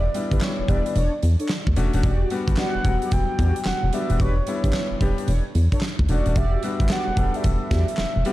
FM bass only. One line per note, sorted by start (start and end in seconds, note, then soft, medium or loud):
0.32 0.39 G1 medium
0.59 0.63 E1 soft
0.69 0.82 E1 medium
0.96 1.09 E1 loud
1.23 1.36 E2 loud
1.67 1.75 D2 medium
1.77 1.90 E1 medium
1.94 2.02 D#1 medium
2.04 2.25 E1 loud
2.48 2.55 G1 medium
2.75 2.79 E1 soft
2.85 2.98 E1 medium
3.12 3.25 E1 loud
3.39 3.52 E2 medium
3.66 3.73 E1 soft
3.83 3.91 E1 medium
4.10 4.18 D#1 medium
4.20 4.41 E1 loud
4.64 4.72 G1 medium
4.91 4.95 E1 soft
5.01 5.14 E1 medium
5.28 5.41 E1 loud
5.55 5.68 E2 loud
5.99 6.07 D2 medium
6.09 6.23 E1 medium
6.26 6.34 D#1 medium
6.36 6.57 E1 loud
6.80 6.88 G1 medium
7.08 7.11 E1 soft
7.17 7.30 E1 medium
7.45 7.58 E1 medium
7.71 7.85 E2 loud
7.99 8.06 E1 soft
8.16 8.24 E1 medium